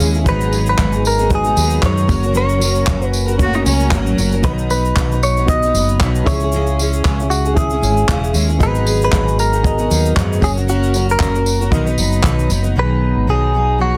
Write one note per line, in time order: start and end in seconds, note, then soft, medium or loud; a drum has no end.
0.00 0.24 D#2 medium
0.00 0.14 G#3 medium
0.00 0.24 G#3 medium
0.00 0.28 C#4 medium
0.00 0.15 C#4 medium
0.00 0.28 E4 medium
0.00 0.15 E4 medium
0.00 0.14 G#4 medium
0.00 0.28 C#5 medium
0.00 tambourine medium
0.00 shaker soft
0.14 0.26 C#4 soft
0.14 0.27 E4 soft
0.14 0.26 G#4 medium
0.14 shaker soft
0.24 0.74 G#1 loud
0.24 0.52 G#2 medium
0.24 0.52 D#3 medium
0.24 0.51 F#3 medium
0.24 1.13 G#3 medium
0.24 0.52 B3 medium
0.24 1.13 D#4 medium
0.24 0.52 D#4 medium
0.24 1.14 F#4 medium
0.24 0.53 G#4 medium
0.24 1.14 B4 medium
0.24 kick loud
0.24 shaker medium
0.29 0.68 B4 medium
0.41 shaker soft
0.52 0.78 F#3 medium
0.52 0.78 B3 medium
0.52 0.79 D#4 medium
0.52 0.79 G#4 medium
0.52 tambourine medium
0.66 1.03 B4 medium
0.66 shaker medium
0.78 1.53 G#1 medium
0.78 0.93 G#2 medium
0.78 0.93 D#3 medium
0.78 0.93 F#3 medium
0.78 0.92 B3 medium
0.78 0.92 D#4 medium
0.78 0.91 G#4 medium
0.78 kick loud
0.78 clap loud
0.78 shaker medium
0.92 1.20 F#3 soft
0.92 1.19 B3 soft
0.92 1.18 D#4 medium
0.92 1.17 G#4 medium
0.92 shaker soft
1.05 1.30 A#4 medium
1.05 tambourine medium
1.19 1.45 F#3 soft
1.19 1.45 B3 medium
1.19 1.44 D#4 medium
1.19 1.43 G#4 medium
1.19 shaker soft
1.29 2.08 G#3 medium
1.29 2.09 D#4 medium
1.29 2.08 F#4 medium
1.29 2.09 B4 medium
1.29 kick loud
1.29 shaker medium
1.35 1.85 G#4 medium
1.44 1.55 F#3 soft
1.44 1.56 B3 soft
1.44 1.57 D#4 soft
1.44 1.56 G#4 medium
1.44 shaker soft
1.56 1.81 D#2 medium
1.56 1.82 F#3 medium
1.56 1.81 B3 medium
1.56 1.82 D#4 medium
1.56 1.82 G#4 medium
1.56 tambourine medium
1.56 shaker soft
1.70 shaker soft
1.82 2.07 F#2 medium
1.82 2.09 G#2 medium
1.82 2.09 D#3 medium
1.82 2.06 F#3 medium
1.82 2.08 B3 medium
1.82 2.09 D#4 medium
1.82 2.09 G#4 medium
1.82 2.36 C#5 loud
1.82 kick loud
1.82 clap loud
1.82 shaker medium
1.98 shaker soft
2.07 2.83 F#1 medium
2.07 2.23 F#3 medium
2.07 2.96 A#3 medium
2.07 2.23 C#4 medium
2.07 2.96 C#4 medium
2.07 2.97 F#4 medium
2.07 2.23 F#4 medium
2.07 2.21 A#4 medium
2.07 2.97 C#5 medium
2.07 kick loud
2.07 tambourine medium
2.07 shaker soft
2.22 2.32 C#4 soft
2.22 2.33 F#4 soft
2.22 2.33 A#4 medium
2.22 shaker soft
2.33 2.57 F#3 medium
2.33 2.59 C#4 medium
2.33 2.60 F#4 medium
2.33 2.60 A#4 medium
2.33 shaker medium
2.37 3.06 C#5 medium
2.49 shaker soft
2.59 2.85 F#3 medium
2.59 2.85 C#4 medium
2.59 2.85 F#4 medium
2.59 2.86 A#4 medium
2.59 tambourine medium
2.75 shaker soft
2.86 3.62 F#1 loud
2.86 3.01 F#3 medium
2.86 3.01 C#4 medium
2.86 3.00 F#4 medium
2.86 2.99 A#4 medium
2.86 kick loud
2.86 clap loud
2.86 shaker medium
3.00 3.27 C#4 soft
3.00 3.26 F#4 medium
3.00 3.24 A#4 medium
3.00 shaker soft
3.06 3.37 B4 medium
3.13 tambourine medium
3.26 3.54 C#4 soft
3.26 3.53 F#4 medium
3.26 3.51 A#4 medium
3.26 shaker soft
3.38 3.46 A3 medium
3.38 4.26 C#4 medium
3.38 4.27 F#4 medium
3.38 3.56 F#4 medium
3.38 4.27 C#5 medium
3.38 kick loud
3.38 shaker medium
3.44 4.29 A#3 medium
3.53 3.65 C#4 soft
3.53 3.65 D#4 medium
3.53 3.65 F#4 medium
3.53 3.65 A#4 medium
3.53 shaker soft
3.65 3.93 C#2 medium
3.65 3.90 F#3 medium
3.65 3.95 C#4 medium
3.65 3.91 C#4 medium
3.65 3.91 F#4 medium
3.65 3.92 A#4 medium
3.65 tambourine medium
3.65 shaker soft
3.80 shaker soft
3.91 4.16 G#1 medium
3.91 4.16 F#3 medium
3.91 4.05 A#3 medium
3.91 4.16 C#4 medium
3.91 4.17 F#4 medium
3.91 4.19 A#4 loud
3.91 kick loud
3.91 clap loud
3.91 shaker medium
4.05 4.42 F#3 medium
4.05 shaker soft
4.17 4.42 F#1 medium
4.17 4.32 F#3 medium
4.17 4.32 C#4 medium
4.17 4.32 F#4 medium
4.17 4.31 A#4 medium
4.17 tambourine medium
4.17 shaker soft
4.32 4.44 C#4 soft
4.32 4.44 F#4 soft
4.32 4.44 A#4 medium
4.32 shaker soft
4.42 4.92 B1 loud
4.42 4.70 B2 medium
4.42 4.70 D#3 medium
4.42 4.68 F#3 medium
4.42 5.30 B3 medium
4.42 4.69 B3 medium
4.42 5.31 D#4 medium
4.42 4.70 D#4 medium
4.42 5.31 F#4 medium
4.42 4.51 B4 medium
4.42 4.71 B4 medium
4.42 5.31 D#5 medium
4.42 kick loud
4.42 shaker medium
4.58 shaker soft
4.70 4.96 F#3 medium
4.70 4.96 B3 medium
4.70 4.97 D#4 medium
4.70 5.23 B4 medium
4.70 4.97 B4 medium
4.70 tambourine medium
4.85 shaker soft
4.96 5.71 B1 loud
4.96 5.11 B2 medium
4.96 5.11 D#3 medium
4.96 5.11 F#3 medium
4.96 5.12 B3 medium
4.96 5.12 D#4 medium
4.96 5.11 B4 medium
4.96 kick loud
4.96 clap loud
4.96 shaker medium
5.12 5.39 F#3 soft
5.12 5.38 B3 soft
5.12 5.38 D#4 medium
5.12 5.36 B4 soft
5.12 shaker soft
5.23 5.47 C#5 medium
5.23 tambourine medium
5.37 5.64 F#3 soft
5.37 5.64 B3 soft
5.37 5.64 D#4 medium
5.37 5.63 B4 medium
5.37 shaker soft
5.46 6.25 B3 medium
5.46 6.26 D#4 medium
5.46 6.26 F#4 medium
5.46 6.26 D#5 medium
5.46 5.97 D#5 medium
5.46 kick loud
5.46 shaker medium
5.63 5.75 B3 soft
5.63 5.75 D#4 soft
5.63 5.75 B4 medium
5.63 shaker soft
5.67 5.75 F#3 soft
5.74 5.98 F#1 medium
5.74 6.01 F#3 medium
5.74 6.01 B3 medium
5.74 6.02 D#4 medium
5.74 tambourine medium
5.74 shaker soft
5.78 6.02 B4 medium
5.89 shaker soft
6.00 6.24 B1 medium
6.00 6.27 B2 medium
6.00 6.28 D#3 medium
6.00 6.28 F#3 medium
6.00 6.28 B3 medium
6.00 6.28 D#4 medium
6.00 6.28 B4 medium
6.00 kick loud
6.00 clap loud
6.00 shaker medium
6.15 shaker soft
6.24 7.00 C#2 loud
6.24 7.12 C#4 medium
6.24 7.12 E4 medium
6.24 7.13 G#4 medium
6.24 7.30 C#5 loud
6.24 7.13 E5 medium
6.24 kick loud
6.24 tambourine medium
6.24 shaker soft
6.28 6.41 G#3 medium
6.28 6.42 E4 medium
6.28 6.41 G#4 medium
6.40 6.53 E4 soft
6.40 6.53 G#4 medium
6.40 shaker soft
6.45 6.53 C#4 soft
6.52 6.79 C#3 medium
6.52 6.78 G#3 medium
6.52 6.79 C#4 medium
6.52 6.79 E4 medium
6.52 6.80 G#4 medium
6.52 shaker medium
6.67 shaker soft
6.79 7.04 G#3 medium
6.79 7.05 C#4 medium
6.79 7.06 E4 medium
6.79 7.05 G#4 medium
6.79 tambourine medium
6.93 shaker medium
7.05 7.79 C#2 loud
7.05 7.19 C#3 medium
7.05 7.19 G#3 medium
7.05 7.19 C#4 medium
7.05 7.19 E4 medium
7.05 7.17 G#4 medium
7.05 kick loud
7.05 clap loud
7.05 shaker medium
7.19 7.46 C#4 soft
7.19 7.45 E4 soft
7.19 7.43 G#4 medium
7.19 shaker soft
7.30 7.56 F#4 medium
7.30 tambourine medium
7.45 7.72 C#4 soft
7.45 7.71 E4 soft
7.45 7.70 G#4 medium
7.45 shaker soft
7.53 8.42 C#4 medium
7.53 8.43 E4 medium
7.53 8.42 G#4 medium
7.53 8.30 G#4 medium
7.53 8.43 E5 medium
7.53 kick loud
7.53 shaker medium
7.70 7.81 C#4 soft
7.70 7.82 E4 soft
7.70 7.83 G#4 medium
7.70 shaker soft
7.81 8.06 G#1 medium
7.81 8.08 G#3 medium
7.81 8.08 C#4 medium
7.81 8.09 E4 medium
7.81 8.09 G#4 medium
7.81 tambourine medium
7.81 shaker soft
7.97 shaker soft
8.08 8.34 C#3 medium
8.08 8.32 G#3 medium
8.08 8.33 C#4 medium
8.08 8.33 E4 medium
8.08 8.35 G#4 medium
8.08 kick loud
8.08 clap loud
8.08 shaker medium
8.24 shaker soft
8.33 8.58 D#2 loud
8.33 8.48 G#3 medium
8.33 8.49 C#4 medium
8.33 8.48 E4 medium
8.33 8.46 G#4 medium
8.33 tambourine medium
8.33 shaker soft
8.48 8.60 C#4 soft
8.48 8.60 E4 soft
8.48 8.60 G#4 medium
8.48 shaker soft
8.59 9.08 G#1 loud
8.59 8.86 G#2 medium
8.59 8.86 D#3 medium
8.59 8.84 F#3 medium
8.59 9.46 B3 medium
8.59 8.85 B3 medium
8.59 8.85 D#4 loud
8.59 9.47 F#4 medium
8.59 9.47 G#4 medium
8.59 8.86 G#4 loud
8.59 9.47 D#5 medium
8.59 kick loud
8.59 shaker medium
8.63 9.03 B4 loud
8.75 shaker soft
8.85 9.10 F#3 medium
8.85 9.10 B3 medium
8.85 9.10 D#4 medium
8.85 9.11 G#4 medium
8.85 tambourine medium
9.01 9.39 B4 loud
9.01 shaker medium
9.11 9.86 G#1 medium
9.11 9.26 G#2 medium
9.11 9.26 D#3 medium
9.11 9.26 F#3 medium
9.11 9.26 B3 medium
9.11 9.25 D#4 medium
9.11 9.23 G#4 medium
9.11 kick loud
9.11 clap loud
9.11 shaker medium
9.24 9.53 F#3 soft
9.24 9.52 B3 soft
9.24 9.52 D#4 soft
9.24 9.51 G#4 medium
9.24 shaker soft
9.39 10.13 A#4 medium
9.39 tambourine medium
9.52 9.79 F#3 soft
9.52 9.78 B3 soft
9.52 9.77 D#4 soft
9.52 9.77 G#4 medium
9.52 shaker soft
9.63 10.41 B3 medium
9.63 10.40 F#4 medium
9.63 10.42 G#4 medium
9.63 10.42 D#5 medium
9.63 kick loud
9.63 shaker medium
9.78 9.89 F#3 soft
9.78 9.89 B3 soft
9.78 9.90 D#4 soft
9.78 9.90 G#4 medium
9.78 shaker soft
9.90 10.14 D#2 medium
9.90 10.15 F#3 medium
9.90 10.16 B3 medium
9.90 10.16 D#4 medium
9.90 10.16 G#4 medium
9.90 tambourine medium
9.90 shaker soft
10.06 shaker medium
10.16 10.40 F#2 medium
10.16 10.42 G#2 medium
10.16 10.42 D#3 medium
10.16 10.39 F#3 medium
10.16 10.41 B3 medium
10.16 10.42 D#4 medium
10.16 10.42 G#4 loud
10.16 kick loud
10.16 clap medium
10.16 shaker medium
10.33 shaker soft
10.40 11.16 F#1 medium
10.40 10.55 F#3 medium
10.40 11.28 A#3 medium
10.40 10.56 C#4 medium
10.40 11.28 C#4 medium
10.40 11.28 F#4 medium
10.40 10.55 F#4 medium
10.40 10.53 A#4 medium
10.40 11.29 C#5 medium
10.40 kick loud
10.40 tambourine medium
10.44 10.51 G#4 medium
10.44 shaker soft
10.54 10.67 C#4 soft
10.54 10.67 F#4 soft
10.54 10.67 A#4 medium
10.54 shaker soft
10.67 10.93 F#3 medium
10.67 10.93 C#4 medium
10.67 10.94 F#4 medium
10.67 11.06 F#4 medium
10.67 10.94 A#4 medium
10.67 shaker medium
10.83 shaker soft
10.94 11.18 F#3 medium
10.94 11.18 C#4 medium
10.94 11.19 F#4 medium
10.94 11.19 A#4 medium
10.94 tambourine medium
10.94 shaker medium
11.09 11.83 A#4 loud
11.09 shaker medium
11.19 11.68 F#1 loud
11.19 11.33 F#3 medium
11.19 11.34 C#4 medium
11.19 11.34 F#4 medium
11.19 11.32 A#4 medium
11.19 kick loud
11.19 clap loud
11.19 shaker medium
11.34 11.60 C#4 soft
11.34 11.59 F#4 soft
11.34 11.58 A#4 medium
11.34 shaker soft
11.46 tambourine medium
11.59 11.72 C#4 soft
11.59 11.72 F#4 medium
11.59 11.71 A#4 medium
11.59 shaker soft
11.71 11.96 B1 loud
11.71 11.86 B2 medium
11.71 11.86 D#3 medium
11.71 11.86 F#3 medium
11.71 12.58 B3 medium
11.71 11.86 B3 medium
11.71 12.58 D#4 medium
11.71 11.85 D#4 loud
11.71 12.59 F#4 medium
11.71 11.84 B4 medium
11.71 12.59 D#5 medium
11.71 kick loud
11.71 shaker medium
11.85 11.96 F#3 soft
11.85 11.97 B3 soft
11.85 11.98 D#4 medium
11.85 11.97 B4 medium
11.85 shaker soft
11.97 12.21 F#1 medium
11.97 12.23 F#3 medium
11.97 12.23 B3 medium
11.97 12.24 D#4 medium
11.97 12.24 B4 medium
11.97 tambourine medium
12.13 shaker medium
12.23 12.47 B1 medium
12.23 12.49 B2 medium
12.23 12.49 D#3 medium
12.23 12.48 F#3 medium
12.23 12.48 B3 medium
12.23 12.50 D#4 medium
12.23 12.50 B4 loud
12.23 kick loud
12.23 clap loud
12.23 shaker medium
12.39 shaker soft
12.49 12.73 F#1 medium
12.49 12.64 F#3 medium
12.49 12.63 B3 medium
12.49 12.63 D#4 medium
12.49 12.61 B4 medium
12.49 tambourine medium
12.49 shaker soft
12.63 12.76 F#3 soft
12.63 12.75 B3 soft
12.63 12.75 D#4 medium
12.63 12.75 B4 medium
12.63 shaker soft
12.76 13.13 B1 medium
12.76 13.26 B2 medium
12.76 13.27 D#3 medium
12.76 13.27 F#3 medium
12.76 13.28 B3 medium
12.76 13.29 D#4 medium
12.76 13.29 G#4 medium
12.76 13.30 B4 medium
13.16 13.26 G#1 medium
13.27 13.97 B1 medium
13.27 13.53 B2 medium
13.27 13.53 D#3 medium
13.27 13.52 F#3 medium
13.27 13.53 B3 medium
13.27 13.54 D#4 medium
13.27 13.54 G#4 medium
13.27 13.81 G#4 medium
13.53 13.77 F#3 medium
13.53 13.78 B3 soft
13.53 13.79 D#4 medium
13.53 13.79 G#4 medium
13.78 13.93 F#3 soft
13.78 13.93 B3 soft
13.78 13.93 D#4 soft
13.78 13.97 F#4 medium
13.78 13.92 G#4 medium
13.93 13.97 G#4 soft